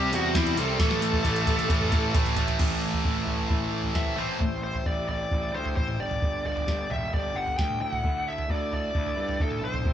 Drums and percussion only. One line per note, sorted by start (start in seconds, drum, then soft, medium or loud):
0.13 closed hi-hat medium
0.35 kick medium
0.35 snare loud
0.35 closed hi-hat loud
0.47 closed hi-hat medium
0.57 closed hi-hat medium
0.80 kick loud
0.80 snare medium
0.80 closed hi-hat loud
0.91 snare medium
1.02 closed hi-hat medium
1.13 kick medium
1.25 kick medium
1.25 closed hi-hat medium
1.25 mid tom medium
1.36 closed hi-hat medium
1.47 kick medium
1.47 closed hi-hat medium
1.59 closed hi-hat soft
1.59 mid tom medium
1.70 kick loud
1.70 closed hi-hat loud
1.81 mid tom medium
1.92 kick loud
1.92 closed hi-hat medium
2.15 kick medium
2.15 closed hi-hat loud
2.15 floor tom loud
2.26 closed hi-hat soft
2.26 floor tom loud
2.36 closed hi-hat medium
2.36 floor tom loud
2.48 closed hi-hat soft
2.48 floor tom loud
2.59 kick loud
2.59 floor tom medium
2.59 crash medium
2.71 floor tom medium
2.94 floor tom medium
3.05 kick medium
3.27 floor tom medium
3.38 floor tom medium
3.50 kick loud
3.50 floor tom medium
3.84 floor tom medium
3.95 kick loud
3.95 snare medium
3.95 mid tom medium
4.06 floor tom medium
4.17 mid tom medium
4.40 kick medium
4.40 floor tom medium
4.75 floor tom medium
4.86 kick medium
5.09 floor tom medium
5.31 kick medium
5.31 floor tom medium
5.43 floor tom medium
5.66 floor tom medium
5.77 kick medium
5.77 floor tom medium
5.88 mid tom medium
6.11 floor tom medium
6.11 mid tom medium
6.22 kick medium
6.22 floor tom medium
6.45 floor tom medium
6.57 floor tom medium
6.68 kick medium
6.68 snare medium
6.91 floor tom medium
6.91 mid tom medium
7.13 kick medium
7.13 floor tom medium
7.47 floor tom medium
7.59 kick loud
7.59 snare medium
7.59 floor tom medium
7.70 mid tom medium
7.93 floor tom medium
7.93 mid tom medium
8.04 kick loud
8.04 floor tom medium
8.38 floor tom medium
8.50 kick medium
8.73 floor tom medium
8.95 kick medium
8.95 floor tom medium
9.06 floor tom medium
9.29 floor tom medium
9.40 kick loud
9.40 floor tom medium
9.51 mid tom medium
9.74 floor tom medium
9.74 mid tom medium
9.85 kick medium
9.85 floor tom medium